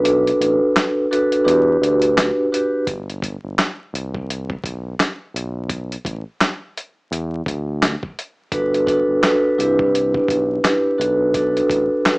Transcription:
Already playing: analog synth bass B1
0.04 vibraphone D4 F#4 A4 B4, closed hi-hat
0.27 closed hi-hat
0.40 analog synth bass A1, closed hi-hat
0.76 snare, clap, closed hi-hat
1.11 vibraphone D4 F#4 A4 B4, closed hi-hat
1.32 closed hi-hat
1.44 analog synth bass E2, vibraphone D4 F#4 G4 B4, closed hi-hat
1.81 analog synth bass D2, closed hi-hat
2.02 closed hi-hat
2.18 snare, clap, closed hi-hat
2.52 vibraphone D4 F#4 G4 B4, closed hi-hat
2.87 analog synth bass G1, kick, closed hi-hat
3.10 closed hi-hat
3.22 kick, closed hi-hat
3.44 analog synth bass G1
3.59 snare, clap, closed hi-hat
3.93 analog synth bass C2, closed hi-hat
4.14 kick
4.30 closed hi-hat
4.50 kick
4.64 analog synth bass B1, kick, closed hi-hat
5.00 snare, clap, closed hi-hat
5.34 analog synth bass B1, closed hi-hat
5.69 kick, closed hi-hat
5.92 closed hi-hat
6.05 analog synth bass A1, kick, closed hi-hat
6.41 snare, clap, closed hi-hat
6.77 closed hi-hat
7.11 analog synth bass E2, closed hi-hat
7.46 analog synth bass D2, kick, closed hi-hat
7.82 snare, clap, closed hi-hat
8.03 kick
8.19 closed hi-hat
8.52 analog synth bass G1, vibraphone D4 F#4 A4 B4, kick, closed hi-hat
8.74 closed hi-hat
8.86 vibraphone D4 F#4 A4 B4, kick, closed hi-hat
9.09 analog synth bass G1
9.22 vibraphone D4 F#4 A4 B4, snare, clap, closed hi-hat
9.58 analog synth bass C2, vibraphone D4 E4 G4 B4, closed hi-hat
9.79 kick
9.95 closed hi-hat
10.14 kick
10.28 analog synth bass B1, kick, closed hi-hat
10.64 vibraphone D4 E4 G4 B4, snare, clap, closed hi-hat
10.98 analog synth bass B1, vibraphone D4 F#4 A4 B4, closed hi-hat
11.34 vibraphone D4 F#4 A4 B4, kick, closed hi-hat
11.57 closed hi-hat
11.70 analog synth bass A1, kick, closed hi-hat
12.06 snare, clap, closed hi-hat

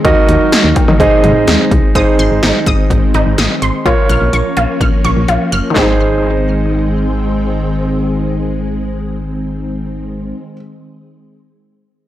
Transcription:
Already playing: string machine D#3
0.04 fm bass D#2, string machine F#3 A#3, grand piano D#4 F#4 A#4 D#5, kick, closed hi-hat
0.29 fm bass D#2, closed hi-hat
0.52 snare, closed hi-hat
0.64 fm bass D#2
0.76 kick, closed hi-hat, cowbell
0.88 fm bass D#3, mid tom
1.00 fm bass G#1, string machine G#3 C4, grand piano D#4 G#4 C5 D#5, kick, closed hi-hat
1.24 fm bass G#2, closed hi-hat, mid tom
1.48 fm bass D#2, snare, closed hi-hat
1.71 fm bass C2, kick, closed hi-hat
1.95 fm bass G#1, string machine D#3 G#3 C4, grand piano D#4 G#4 C5, synth arpeggio sound D#6, kick, closed hi-hat
2.19 fm bass G#1, synth arpeggio sound C6, closed hi-hat
2.31 fm bass G#1
2.43 fm bass G#1, synth arpeggio sound D#4, snare, closed hi-hat
2.66 fm bass G#1, synth arpeggio sound D#6, kick, closed hi-hat
2.90 fm bass G#1, kick, closed hi-hat
3.14 fm bass G#1, synth arpeggio sound D#4, closed hi-hat
3.27 fm bass G#1
3.38 fm bass G#1, synth arpeggio sound D#6, snare, closed hi-hat
3.62 fm bass G#1, synth arpeggio sound C6, closed hi-hat
3.86 fm bass A#1, string machine F3 A#3 C#4, synth arpeggio sound F4, grand piano F4 A#4 C#5, kick, closed hi-hat
4.09 fm bass A#1, synth arpeggio sound F6, closed hi-hat
4.22 fm bass A#1
4.33 fm bass A#1, synth arpeggio sound C#6, closed hi-hat
4.57 fm bass A#1, synth arpeggio sound F4, closed hi-hat
4.81 fm bass A#1, synth arpeggio sound F6, kick, closed hi-hat
5.04 fm bass A#1, synth arpeggio sound C#6, closed hi-hat
5.17 fm bass A#1
5.28 fm bass A#1, synth arpeggio sound F4, closed hi-hat
5.52 fm bass F#1, synth arpeggio sound F6, closed hi-hat
5.70 synth arpeggio sound D#3 G#3, grand piano D#4
5.76 fm bass G#1, string machine D#3 G#3 C4, synth arpeggio sound C4, grand piano G#4 C5, kick, snare, clap
5.82 synth arpeggio sound D#4

